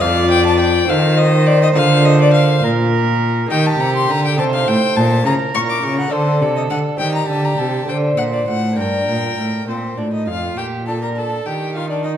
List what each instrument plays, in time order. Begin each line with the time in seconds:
Already playing: lute C4
0.00 cello F2, lute F2 F4 A4, violin D5 F5
0.30 violin G5
0.46 violin A5
0.60 violin G5
0.85 lute C4 F4 A4, violin C5
0.89 cello D#3, lute D#3, violin F5
1.17 violin D#5
1.46 violin D5
1.63 violin D#5
1.73 cello D3, lute A#3 F4 A#4, violin F5
1.77 lute D3
2.05 violin D#5
2.21 violin D5
2.34 violin F5
2.64 lute A#2, cello A#2, violin A#4
3.46 lute A#3 D#4 A#4
3.51 lute D#3, cello D#3, violin G4 G5
3.66 violin A5
3.80 cello C3, lute C3, violin A#5
3.96 violin C6
4.08 lute D3, cello D3, violin A#5
4.25 violin G5
4.35 cello C3, lute A3 D#4 D#5, violin C5 A5
4.39 lute C3
4.54 violin F5
4.67 cello A2, lute A2, violin G5
4.96 cello A#2, lute A#2, violin A5
5.22 lute C#3 E4 C#5, cello C#3, violin A#4 A#5
5.54 lute A#2, cello A#2, violin C#6
5.70 violin D6
5.83 lute C#3, cello C#3, violin C#6
5.99 violin F#5
6.08 lute A3 D4 A4
6.12 lute D3, cello D3, violin A4 C5
6.42 cello C3, lute C3, violin D5
6.56 violin D#5
6.70 lute D3, cello D3, violin F#5
6.97 cello D#3, lute D#3 C4 C5, violin G4 G5
7.15 violin A#5
7.28 cello D3, lute D3, violin A5
7.44 violin A#5
7.58 cello C3, lute C3, violin A5
7.84 lute A3 D4 C5
7.88 cello D3, lute D3, violin C5 G5
8.17 lute A#2, cello A#2, violin F#5
8.33 violin D5
8.48 cello A2, lute A2, violin F#5
8.73 lute A#3 D4 A#4
8.77 cello G2, lute G2, violin A#4 G5
9.08 lute A#2, cello A#2
9.38 cello A2, lute A2
9.68 cello A#2, lute A#2, violin C4 C5
9.98 lute A2, cello A2, violin D4 D5
10.13 violin D#4 D#5
10.27 lute F2, cello F2, violin F4 F5
10.58 cello A#2, lute A#2, violin G4 G5
10.87 lute A#3 D4 F4, violin A4 A5
11.03 violin A#4 A#5
11.17 violin A4 A5
11.46 lute D#3, cello D#3, violin G4 G5
11.75 lute A#3 D#4, violin F4 F5
11.90 violin D4 D5
12.04 violin D#4 D#5